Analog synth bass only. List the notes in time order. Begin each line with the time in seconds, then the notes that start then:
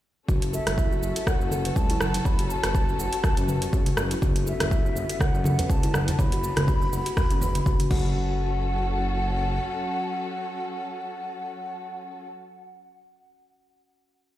0.28 F#1
0.67 F#1
1.02 F#1
1.40 F#1
1.76 C#2
2.01 F#1
2.25 F#1
2.63 F#1
2.99 F#1
3.37 F#1
3.73 C#2
3.97 F#1
4.22 F#1
4.60 F#1
4.96 F#1
5.34 F#1
5.70 C#2
5.94 F#1
6.19 F#1
6.57 F#1
6.92 F#1
7.30 F#1
7.66 F#1
7.91 F#1